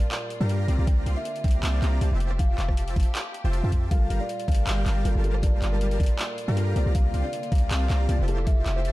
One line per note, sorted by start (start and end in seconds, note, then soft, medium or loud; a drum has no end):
0.00 0.65 A#2 medium
0.00 0.64 G3 medium
0.00 2.16 F4 medium
0.00 0.80 D5 loud
0.12 clap loud
0.12 closed hi-hat medium
0.30 closed hi-hat medium
0.41 0.67 G2 medium
0.41 0.66 G3 loud
0.41 0.66 G4 medium
0.41 0.66 A#4 medium
0.41 0.66 F5 medium
0.41 0.66 A#5 loud
0.49 closed hi-hat medium
0.68 0.77 C2 loud
0.68 2.19 D3 medium
0.68 2.19 A#3 medium
0.68 0.76 C4 loud
0.68 0.76 G4 medium
0.68 0.76 D5 medium
0.68 0.76 F5 medium
0.68 0.76 A#5 loud
0.68 closed hi-hat medium
0.79 0.86 C2 loud
0.79 0.85 C4 medium
0.79 0.85 G4 medium
0.79 0.85 D5 medium
0.79 0.85 F5 medium
0.79 0.85 A#5 medium
0.87 1.05 C2 loud
0.87 1.04 C4 medium
0.87 1.04 G4 medium
0.87 1.04 D5 medium
0.87 1.04 F5 medium
0.87 1.12 G5 loud
0.87 1.04 A#5 loud
0.87 kick loud
0.87 closed hi-hat medium
1.06 1.15 C2 loud
1.06 1.17 C4 medium
1.06 1.17 G4 medium
1.06 1.17 D5 medium
1.06 1.17 F5 medium
1.06 1.17 C6 loud
1.06 closed hi-hat medium
1.17 1.40 E5 medium
1.25 closed hi-hat medium
1.36 closed hi-hat medium
1.44 1.62 C2 loud
1.44 1.61 C4 medium
1.44 1.61 G4 medium
1.44 1.61 D5 medium
1.44 1.61 F5 medium
1.44 2.32 G5 loud
1.44 1.61 A#5 medium
1.44 kick loud
1.44 closed hi-hat soft
1.48 closed hi-hat medium
1.51 closed hi-hat medium
1.63 1.80 C2 loud
1.63 1.80 C4 medium
1.63 1.80 G4 medium
1.63 1.80 D5 medium
1.63 1.80 F5 medium
1.63 1.80 A5 medium
1.63 clap loud
1.63 closed hi-hat medium
1.82 1.99 C2 loud
1.82 1.99 C4 medium
1.82 1.99 G4 medium
1.82 1.99 D5 medium
1.82 1.99 F5 medium
1.82 1.99 A#5 medium
1.82 clap medium
1.82 closed hi-hat medium
2.01 2.10 C2 loud
2.01 2.09 C4 medium
2.01 2.09 G4 medium
2.01 2.09 D5 medium
2.01 2.09 F5 medium
2.01 2.09 A5 medium
2.01 closed hi-hat medium
2.11 2.57 F1 loud
2.11 2.56 F4 medium
2.11 2.56 C5 medium
2.11 2.56 E5 medium
2.11 2.56 G5 medium
2.11 2.56 A5 medium
2.20 3.89 G4 medium
2.20 closed hi-hat medium
2.31 cross-stick medium
2.39 2.64 F5 loud
2.39 kick loud
2.39 closed hi-hat medium
2.58 2.94 F1 loud
2.58 2.94 F4 medium
2.58 2.94 C5 medium
2.58 2.94 E5 medium
2.58 2.94 G5 medium
2.58 2.94 A5 loud
2.58 clap medium
2.58 closed hi-hat medium
2.69 2.92 A5 medium
2.69 kick medium
2.69 cross-stick medium
2.77 closed hi-hat medium
2.88 closed hi-hat medium
2.96 3.05 F1 loud
2.96 3.07 F4 medium
2.96 3.07 C5 medium
2.96 3.07 E5 medium
2.96 3.07 G5 medium
2.96 3.07 A5 medium
2.96 3.84 A5 loud
2.96 kick loud
2.96 closed hi-hat medium
3.00 closed hi-hat medium
3.03 closed hi-hat medium
3.15 clap loud
3.15 closed hi-hat medium
3.34 closed hi-hat medium
3.44 3.61 F1 loud
3.44 3.61 F4 medium
3.44 3.61 C5 medium
3.44 3.61 E5 medium
3.44 3.61 G5 medium
3.44 3.61 A5 medium
3.53 closed hi-hat medium
3.63 3.89 F2 medium
3.63 3.89 F4 medium
3.63 3.89 C5 medium
3.63 3.89 E5 medium
3.63 3.89 G5 medium
3.63 3.89 A5 medium
3.72 kick medium
3.72 closed hi-hat medium
3.89 4.08 G1 medium
3.89 6.73 A#2 medium
3.89 5.02 G3 medium
3.89 4.08 G3 medium
3.89 5.03 F4 medium
3.89 8.24 F4 medium
3.89 4.08 G4 medium
3.89 5.03 A4 medium
3.89 4.08 A#4 medium
3.89 5.04 A#4 medium
3.89 4.08 F5 medium
3.89 4.16 F5 loud
3.89 4.08 A5 loud
3.89 kick loud
3.89 closed hi-hat medium
4.10 4.19 G1 loud
4.10 4.21 G3 medium
4.10 4.21 G4 medium
4.10 4.21 A#4 medium
4.10 4.21 F5 medium
4.10 4.21 A#5 loud
4.10 closed hi-hat medium
4.21 4.44 D5 medium
4.29 closed hi-hat medium
4.39 closed hi-hat medium
4.48 4.65 G1 loud
4.48 4.65 G3 medium
4.48 4.65 G4 medium
4.48 4.65 A#4 medium
4.48 5.36 F5 medium
4.48 4.65 F5 medium
4.48 4.65 A5 medium
4.48 kick loud
4.48 closed hi-hat medium
4.52 closed hi-hat medium
4.55 closed hi-hat medium
4.67 4.84 G1 medium
4.67 4.84 G3 medium
4.67 4.84 G4 medium
4.67 4.84 A#4 medium
4.67 4.84 F5 medium
4.67 4.84 G5 medium
4.67 clap loud
4.67 closed hi-hat medium
4.86 5.03 G1 medium
4.86 5.03 G3 medium
4.86 5.03 G4 medium
4.86 5.03 A#4 medium
4.86 5.03 F5 medium
4.86 5.03 A5 medium
4.86 clap medium
4.86 closed hi-hat medium
5.04 5.13 G1 loud
5.04 5.21 G3 medium
5.04 5.13 G3 medium
5.04 5.22 F4 medium
5.04 5.13 G4 medium
5.04 5.22 A4 medium
5.04 5.13 A#4 medium
5.04 5.23 A#4 loud
5.04 5.13 F5 medium
5.04 5.13 G5 medium
5.04 closed hi-hat medium
5.15 5.60 G1 loud
5.15 5.60 G3 medium
5.15 5.60 G4 medium
5.15 5.60 A#4 medium
5.15 5.60 F5 medium
5.15 5.60 A5 medium
5.23 5.40 G3 medium
5.23 5.41 F4 medium
5.23 5.41 A4 medium
5.23 5.42 A#4 loud
5.23 closed hi-hat medium
5.34 cross-stick medium
5.41 6.54 G3 medium
5.41 6.55 F4 medium
5.41 5.68 D5 loud
5.41 6.55 A5 medium
5.41 kick loud
5.41 closed hi-hat medium
5.45 6.56 A#4 medium
5.62 5.98 G1 medium
5.62 5.98 G3 medium
5.62 5.98 G4 medium
5.62 5.98 A#4 medium
5.62 5.98 F5 medium
5.62 5.98 A5 medium
5.62 clap medium
5.62 closed hi-hat medium
5.72 5.96 A#4 medium
5.81 closed hi-hat medium
5.91 closed hi-hat medium
6.00 6.09 G1 loud
6.00 6.11 G3 medium
6.00 6.11 G4 medium
6.00 6.11 A#4 medium
6.00 6.88 D5 loud
6.00 6.11 F5 medium
6.00 6.11 A5 medium
6.00 kick loud
6.00 closed hi-hat medium
6.03 closed hi-hat medium
6.06 closed hi-hat medium
6.19 clap loud
6.19 closed hi-hat medium
6.38 closed hi-hat medium
6.48 6.74 G2 loud
6.48 6.74 G3 medium
6.48 6.74 G4 medium
6.48 6.74 A#4 medium
6.48 6.74 F5 medium
6.48 6.74 A#5 loud
6.56 6.73 G3 medium
6.56 6.74 F4 medium
6.56 6.74 A4 medium
6.56 6.74 A#4 loud
6.56 closed hi-hat medium
6.75 6.84 C2 loud
6.75 6.91 C3 medium
6.75 8.26 D3 medium
6.75 6.93 A#3 medium
6.75 8.26 A#3 medium
6.75 6.84 C4 loud
6.75 6.93 F4 medium
6.75 6.84 G4 medium
6.75 6.84 D5 medium
6.75 6.93 D5 loud
6.75 6.84 F5 medium
6.75 6.84 A#5 loud
6.75 closed hi-hat medium
6.86 6.93 C2 loud
6.86 6.93 C4 medium
6.86 6.93 G4 medium
6.86 6.93 D5 medium
6.86 6.93 F5 medium
6.86 6.93 A#5 loud
6.93 7.12 C2 loud
6.93 8.06 C3 medium
6.93 8.06 A#3 medium
6.93 7.12 C4 medium
6.93 7.12 G4 medium
6.93 7.12 D5 medium
6.93 8.08 D5 medium
6.93 7.12 F5 medium
6.93 7.20 F5 loud
6.93 7.12 A#5 loud
6.93 kick loud
6.93 closed hi-hat medium
7.14 7.23 C2 loud
7.14 7.25 C4 medium
7.14 7.25 G4 medium
7.14 7.25 D5 medium
7.14 7.25 F5 medium
7.14 7.25 C6 loud
7.14 closed hi-hat medium
7.24 7.48 D5 medium
7.33 closed hi-hat medium
7.43 closed hi-hat medium
7.52 7.69 C2 loud
7.52 7.69 C4 medium
7.52 7.69 G4 medium
7.52 7.69 D5 medium
7.52 7.69 F5 medium
7.52 8.40 F5 loud
7.52 7.69 A#5 medium
7.52 kick loud
7.52 closed hi-hat medium
7.55 closed hi-hat medium
7.58 closed hi-hat medium
7.71 7.88 C2 loud
7.71 7.88 C4 medium
7.71 7.88 G4 medium
7.71 7.88 D5 medium
7.71 7.88 F5 medium
7.71 7.88 A5 medium
7.71 clap loud
7.71 closed hi-hat medium
7.90 8.07 C2 loud
7.90 8.07 C4 medium
7.90 8.07 G4 medium
7.90 8.07 D5 medium
7.90 8.07 F5 medium
7.90 8.07 A#5 loud
7.90 clap medium
7.90 closed hi-hat medium
8.08 8.17 C2 loud
8.08 8.25 C3 medium
8.08 8.26 A#3 medium
8.08 8.17 C4 medium
8.08 8.26 F4 medium
8.08 8.17 G4 medium
8.08 8.17 D5 medium
8.08 8.26 D5 loud
8.08 8.17 F5 medium
8.08 8.17 A5 medium
8.08 closed hi-hat medium
8.19 8.64 F1 medium
8.19 8.64 F4 medium
8.19 8.64 C5 medium
8.19 8.64 E5 medium
8.19 8.64 G5 medium
8.19 8.64 A5 medium
8.27 8.43 F3 loud
8.27 8.45 E4 medium
8.27 8.92 G4 medium
8.27 8.45 G4 medium
8.27 8.45 A4 loud
8.27 closed hi-hat medium
8.38 cross-stick medium
8.45 8.92 F3 medium
8.45 8.92 G4 medium
8.45 8.92 E5 medium
8.45 8.71 E5 loud
8.45 kick loud
8.45 closed hi-hat medium
8.49 8.92 A4 medium
8.66 8.92 F1 medium
8.66 8.92 F4 medium
8.66 8.92 C5 medium
8.66 8.92 E5 medium
8.66 8.92 G5 medium
8.66 8.92 A5 medium
8.66 clap medium
8.66 closed hi-hat medium
8.76 8.92 C5 medium
8.85 closed hi-hat medium